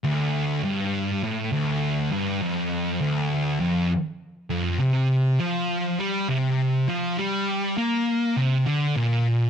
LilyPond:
<<
  \new Staff \with { instrumentName = "Distorted electric guitar" } { \clef bass \time 4/4 \key d \minor \tempo 4 = 101 d,4 g,4 a,8 d,4 g,8 | f,4 d,4 f,8 r4 f,8 | c4 f4 g8 c4 f8 | g4 bes4 c8 d8 bes,4 | }
  \new Staff \with { instrumentName = "Distorted electric guitar" } { \clef bass \time 4/4 \key d \minor d,4 g,4 a,8 d,4 g,8 | f,4 d,4 f,8 r4 f,8 | c4 f4 g8 c4 f8 | g4 bes4 c8 d8 bes,4 | }
>>